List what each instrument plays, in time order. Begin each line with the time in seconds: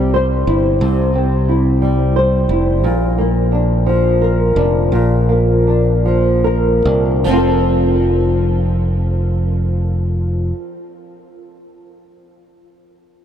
Already playing: fingered electric bass C2, nylon-string guitar C3 G3 C4 E4
0.14 nylon-string guitar C5
0.47 fingered electric bass G1, nylon-string guitar E4
0.81 fingered electric bass C2, nylon-string guitar C3
1.15 nylon-string guitar C4
1.49 nylon-string guitar E4
1.82 nylon-string guitar G3
2.16 nylon-string guitar C5
2.49 fingered electric bass F1, nylon-string guitar E4
2.83 fingered electric bass A#1, nylon-string guitar A#2
3.18 nylon-string guitar A#3
3.52 nylon-string guitar D4
3.86 nylon-string guitar F3
4.22 nylon-string guitar A#4
4.56 fingered electric bass F1, nylon-string guitar D4
4.92 fingered electric bass A#1, nylon-string guitar A#2
5.29 nylon-string guitar A#3
5.67 nylon-string guitar D4
6.05 nylon-string guitar F3
6.44 nylon-string guitar A#4
6.85 fingered electric bass C2, nylon-string guitar D4
7.24 fingered electric bass F1, nylon-string guitar F3
7.29 nylon-string guitar C4
7.33 nylon-string guitar F4 A4